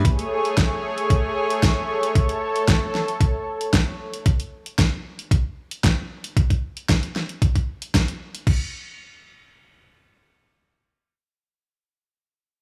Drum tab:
CC |----------------|----------------|----------------|----------------|
HH |xx-xx--xx--xx--x|xx-xx--xx--xx--x|xx-xx--xx--xx--x|xx-xxx-xxx-xxx-x|
SD |----o-------o---|----o-o-----o---|----o-------o---|----o-o-----o---|
BD |o---o---o---o---|o---o---o---o---|o---o---o---o---|oo--o---oo--o---|

CC |x---------------|----------------|
HH |----------------|----------------|
SD |----------------|----------------|
BD |o---------------|----------------|